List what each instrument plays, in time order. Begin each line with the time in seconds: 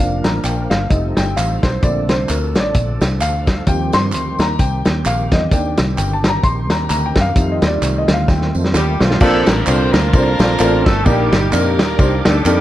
Already playing: grand piano F3 A#3 F5, tonewheel organ D4 A#4
0.00 fingered electric bass F1, tonewheel organ F3 A#3, grand piano D4
0.24 fingered electric bass A1, grand piano A#5, snare, closed hi-hat, tambourine
0.44 fingered electric bass A#1, grand piano G5, clap, closed hi-hat, tambourine
0.70 fingered electric bass G1, grand piano F5, snare, closed hi-hat, tambourine
0.90 fingered electric bass F1, grand piano G3 A3 D#4 D#5, tonewheel organ C4 D#4 A4, kick, closed hi-hat, tambourine
1.17 fingered electric bass G1, grand piano G5, snare, closed hi-hat, tambourine
1.36 fingered electric bass A1, grand piano F5, clap, closed hi-hat, tambourine
1.63 fingered electric bass B1, grand piano C5, kick, snare, closed hi-hat, tambourine
1.82 fingered electric bass A#1, grand piano D3 A3 C4 D5, tonewheel organ F3 D4, kick, closed hi-hat, tambourine
2.09 fingered electric bass C2, grand piano C5, snare, closed hi-hat, tambourine
2.29 fingered electric bass D2, grand piano A#4, clap, closed hi-hat, tambourine
2.55 fingered electric bass A1, grand piano C#5, snare, closed hi-hat, tambourine
2.60 grand piano D5
2.74 fingered electric bass A#1, kick, closed hi-hat, tambourine
3.01 fingered electric bass C2, snare, closed hi-hat, tambourine
3.21 fingered electric bass D2, grand piano F5, clap, closed hi-hat, tambourine
3.47 kick, snare, closed hi-hat, tambourine
3.66 fingered electric bass D#2, tonewheel organ D#3 C4 G4, grand piano F3 G3 C4 G5, kick, closed hi-hat, tambourine
3.92 fingered electric bass G2, grand piano C6, snare, closed hi-hat, tambourine
4.12 fingered electric bass D2, clap, closed hi-hat, tambourine
4.39 fingered electric bass D#2, grand piano A#5, snare, closed hi-hat, tambourine
4.59 fingered electric bass C2, grand piano G5, kick, closed hi-hat, tambourine
4.85 fingered electric bass D#2, snare, closed hi-hat, tambourine
5.05 fingered electric bass A#1, grand piano F5, clap, closed hi-hat, tambourine
5.31 fingered electric bass E2, grand piano D#5, kick, snare, closed hi-hat, tambourine
5.51 fingered electric bass D#2, tonewheel organ D#3, grand piano D#3 A#3 D4 G5, kick, closed hi-hat, tambourine
5.77 fingered electric bass C2, snare, closed hi-hat, tambourine
5.98 fingered electric bass G1, grand piano G5, clap, closed hi-hat, tambourine
6.13 grand piano A5
6.24 snare, closed hi-hat, tambourine
6.28 grand piano A#5
6.43 fingered electric bass A#1, grand piano C6, kick, closed hi-hat, tambourine
6.69 fingered electric bass D#2, grand piano A#5, snare, closed hi-hat, tambourine
6.90 fingered electric bass D2, grand piano A#5, clap, closed hi-hat, tambourine
7.06 grand piano G5
7.15 fingered electric bass F#2, kick, snare, closed hi-hat, tambourine
7.21 grand piano F5
7.35 fingered electric bass F2, tonewheel organ D#3 A3 F4, grand piano G3 A3 D#4, kick, closed hi-hat, tambourine
7.52 grand piano D#5
7.62 fingered electric bass D#2, snare, closed hi-hat, tambourine
7.67 grand piano D5
7.82 fingered electric bass C2, clap, closed hi-hat, tambourine
7.98 grand piano D#5
8.08 fingered electric bass D2, snare, closed hi-hat, tambourine
8.14 grand piano F5
8.28 fingered electric bass D#2, grand piano G5, kick, snare, tambourine
8.41 snare
8.55 fingered electric bass F2, tambourine
8.64 snare
8.74 fingered electric bass D#2, horn section G3 G4, snare, clap, tambourine
9.00 fingered electric bass B1, horn section F3 F4, snare, tambourine
9.11 snare
9.20 fingered electric bass A#1, grand piano A#2 C4 D4 F4 A4 A#4, horn section A3 C4 D4 A4, tonewheel organ A#4 D5 A5 C6, kick, crash, tambourine
9.46 fingered electric bass A1, horn section A#3 A#4, snare, ride, tambourine
9.67 fingered electric bass C2, horn section C4 C5, grand piano C4 D4 F4 A4 A#4, clap, ride, tambourine
9.93 fingered electric bass D2, horn section A#3 D4 F4 A#4, snare, ride, tambourine
10.13 fingered electric bass C2, grand piano C4 D4 F4 A4 C5, kick, ride, tambourine
10.39 fingered electric bass A#1, grand piano C4 D4 F4 A4 C5, snare, ride, tambourine
10.59 fingered electric bass A1, grand piano C4 D4 F4 A4 A#4, clap, ride, tambourine
10.84 fingered electric bass G1, horn section A3 A4, kick, snare, ride, tambourine
11.04 fingered electric bass A#1, grand piano A#2 A#3 D4 D#4 G4 A#4, horn section G3 D4 D#4 G4, tonewheel organ D5 G5 D6, kick, ride, tambourine
11.32 fingered electric bass G1, snare, ride, tambourine
11.51 fingered electric bass F2, horn section A#3 D4 G4 A#4, grand piano A#3 D4 D#4 G4 A#4, clap, ride, tambourine
11.79 fingered electric bass D#2, snare, ride, tambourine
11.99 fingered electric bass C2, grand piano A#3 D4 D#4 G4 C5, kick, ride, tambourine
12.25 fingered electric bass D2, horn section A3 A4, grand piano A#3 D4 D#4 G4 A#4, snare, ride, tambourine
12.44 fingered electric bass F2, horn section G3 G4, grand piano A#3 D4 D#4 G4 A4, clap, ride, tambourine